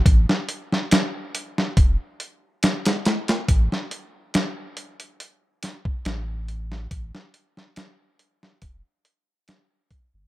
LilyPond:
<<
  \new Staff \with { instrumentName = "Sub bass" } { \clef bass \time 4/4 \key c \major \tempo 4 = 70 a,,16 r4. r16 e,,16 r4. r16 | a,,16 r2 r8. a,,4 | a,,16 r4. r16 e,,16 r4. g,,16 | }
  \new DrumStaff \with { instrumentName = "Drums" } \drummode { \time 4/4 <hh bd>16 sn16 hh16 sn16 <hh sn>8 hh16 sn16 <hh bd>8 hh8 <hh sn>16 <hh sn>16 <hh sn>16 <hh sn>16 | <hh bd>16 sn16 hh8 <hh sn>8 hh16 hh16 hh8 <hh sn>16 bd16 <hh sn>8 hh16 sn16 | <hh bd>16 sn16 hh16 sn16 <hh sn>8 hh16 sn16 <hh bd>8 hh8 <hh sn>8 <hh bd>8 | }
>>